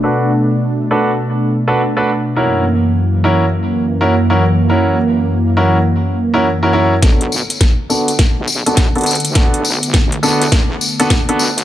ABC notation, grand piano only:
X:1
M:4/4
L:1/16
Q:"Swing 16ths" 1/4=103
K:Bm
V:1 name="Grand piano"
[DFAB]2 z4 [DFAB] z4 [DFAB] z [DFAB] z2 | [CEF^A]2 z4 [CEFA] z4 [CEFA] z [CEFA] z2 | [CEF^A]2 z4 [CEFA] z4 [CEFA] z [CEFA] [CEFA] z | [B,DFA]2 z4 [B,DFA] z4 [B,DFA] z [B,DFA] z2 |
[B,DFA]2 z4 [B,DFA] z4 [B,DFA] z [B,DFA] z2 |]